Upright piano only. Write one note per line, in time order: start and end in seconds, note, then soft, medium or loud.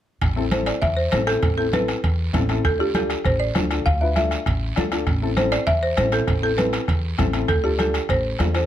0.36 0.42 C4 medium
0.36 0.42 E4 medium
0.36 0.42 A4 medium
0.51 0.73 C4 medium
0.51 0.73 E4 medium
0.51 0.73 A4 medium
1.12 1.18 C4 medium
1.12 1.18 E4 medium
1.12 1.18 A4 medium
1.28 1.38 C4 medium
1.28 1.39 E4 medium
1.28 1.39 A4 medium
1.58 1.63 C4 medium
1.58 1.63 E4 medium
1.58 1.64 A4 medium
1.72 1.94 C4 medium
1.72 1.94 E4 medium
1.72 1.95 A4 medium
2.33 2.39 C4 medium
2.33 2.39 E4 medium
2.33 2.39 A4 medium
2.49 2.60 C4 medium
2.49 2.60 E4 medium
2.49 2.60 A4 medium
2.79 2.85 D4 medium
2.79 2.85 F4 medium
2.79 2.85 A4 medium
2.95 3.16 D4 medium
2.95 3.16 F4 medium
2.95 3.16 A4 medium
3.55 3.61 D4 medium
3.55 3.61 F4 medium
3.55 3.61 A4 medium
3.71 3.81 D4 medium
3.71 3.82 F4 soft
3.71 3.82 A4 medium
4.01 4.06 D4 medium
4.01 4.07 F4 medium
4.01 4.07 B4 medium
4.17 4.38 D4 medium
4.17 4.38 F4 medium
4.17 4.38 A4 medium
4.77 4.82 D4 medium
4.77 4.82 F4 medium
4.77 4.82 A4 medium
4.92 5.02 D4 medium
4.92 5.03 F4 medium
4.92 5.03 A4 medium
5.22 5.27 C4 medium
5.22 5.28 E4 medium
5.22 5.28 A4 medium
5.37 5.58 C4 medium
5.37 5.58 E4 medium
5.37 5.58 A4 medium
5.97 6.03 C4 medium
5.97 6.03 E4 medium
5.97 6.03 A4 medium
6.12 6.23 C4 medium
6.12 6.23 E4 soft
6.12 6.23 A4 medium
6.42 6.48 C4 medium
6.42 6.48 E4 medium
6.42 6.48 A4 medium
6.57 6.79 C4 medium
6.57 6.79 E4 medium
6.57 6.79 A4 medium
7.18 7.24 C4 medium
7.18 7.24 E4 medium
7.18 7.24 A4 medium
7.33 7.44 C4 medium
7.33 7.44 E4 medium
7.33 7.45 A4 medium
7.64 7.69 D4 medium
7.64 7.70 F4 medium
7.64 7.70 A4 medium
7.78 8.00 D4 medium
7.78 8.00 F4 medium
7.78 8.00 A4 medium
8.40 8.45 D4 medium
8.40 8.45 F4 medium
8.40 8.45 A4 medium
8.54 8.65 D4 soft
8.54 8.65 F4 soft
8.54 8.65 A4 medium